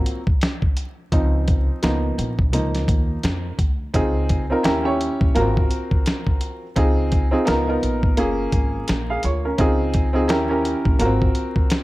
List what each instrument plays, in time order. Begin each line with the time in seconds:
Already playing: upright piano F#3 A#3 C4 F4
0.06 closed hi-hat
0.27 kick
0.41 snare, closed hi-hat
0.62 kick
0.77 closed hi-hat
1.12 upright bass C#2, upright piano F3 C4 D#4, kick, closed hi-hat
1.48 kick, closed hi-hat
1.82 upright bass C#2, upright piano F3 A#3 B3 D#4, snare, closed hi-hat
2.18 upright bass A#1, closed hi-hat
2.39 kick
2.53 upright bass C#2, upright piano F3 A#3 D#4, closed hi-hat
2.75 snare, closed hi-hat
2.88 upright bass D#2, kick, closed hi-hat
3.23 upright bass F2, snare, closed hi-hat
3.59 upright bass D2, kick, closed hi-hat
3.94 upright bass C#2, upright piano C4 D#4 F4 G#4, kick, closed hi-hat
4.29 kick, closed hi-hat
4.50 upright piano C4 D#4 F4 A#4
4.63 upright bass D#2, upright piano C#4 E4 G4 A#4, snare, closed hi-hat
4.84 upright piano C#4 E4 G4 C#5
5.01 closed hi-hat
5.21 upright bass A#1, kick
5.35 upright bass G#1, upright piano A#3 F4 F#4 A#4, closed hi-hat
5.41 upright piano C4
5.57 kick
5.71 closed hi-hat
5.91 kick
6.06 snare, closed hi-hat
6.27 kick
6.41 closed hi-hat
6.76 upright bass C#2, upright piano C4 D#4 F4 G#4, kick, closed hi-hat
7.12 kick, closed hi-hat
7.31 upright piano C4 D#4 F4 G#4
7.45 upright bass C#2, upright piano B3 D#4 F4 A#4, snare, closed hi-hat
7.67 upright piano B3 D#4 F4 A#4
7.83 upright bass A#1, closed hi-hat
8.03 kick
8.17 upright bass F#1, upright piano A#3 C#4 F4 G#4, closed hi-hat
8.52 upright bass G#1, kick, closed hi-hat
8.88 upright bass A#1, snare, closed hi-hat
9.10 upright piano G#4 F5
9.23 upright bass D2, upright piano F4 C#5, closed hi-hat
9.45 upright piano C#4 A#4
9.58 upright bass C#2, upright piano C4 D#4 F4 G#4, kick, closed hi-hat
9.94 kick, closed hi-hat
10.13 upright piano C4 D#4 F4 G#4
10.28 upright bass D#2, upright piano C#4 E4 G4 A#4, snare, closed hi-hat
10.49 upright piano C#4 E4 G4 A#4
10.65 closed hi-hat
10.85 upright bass A#1, kick
10.99 upright bass G#1, upright piano A#3 F4 F#4 A#4, closed hi-hat
11.05 upright piano C4
11.22 kick
11.35 closed hi-hat
11.56 kick
11.70 snare, closed hi-hat